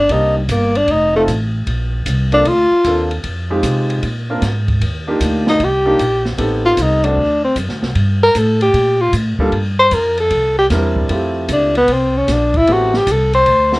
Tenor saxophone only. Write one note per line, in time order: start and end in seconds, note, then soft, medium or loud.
0.00 0.14 D4 medium
0.13 0.37 D#4 medium
0.38 0.53 G3 soft
0.51 0.78 A#3 medium
0.77 0.94 D4 loud
0.92 1.15 D#4 medium
1.16 1.23 A3 medium
2.34 2.50 D4 loud
2.48 3.12 F4 loud
5.49 5.65 D#4 medium
5.64 6.27 G4 medium
6.65 6.83 F4 loud
6.81 7.06 D#4 medium
7.05 7.44 D4 medium
7.44 7.56 C4 medium
8.23 8.39 A#4 loud
8.38 8.61 A4 medium
8.62 9.03 G4 loud
9.01 9.14 F4 medium
9.80 9.96 C5 loud
9.94 10.19 A#4 loud
10.20 10.56 A4 loud
10.59 10.66 G4 loud
11.53 11.76 D4 medium
11.77 11.94 B3 loud
11.93 12.19 C4 medium
12.17 12.33 C#4 medium
12.32 12.59 D4 medium
12.57 12.74 E4 loud
12.72 12.98 F#4 medium
12.97 13.13 G4 medium
13.12 13.34 A4 medium
13.35 13.80 C5 loud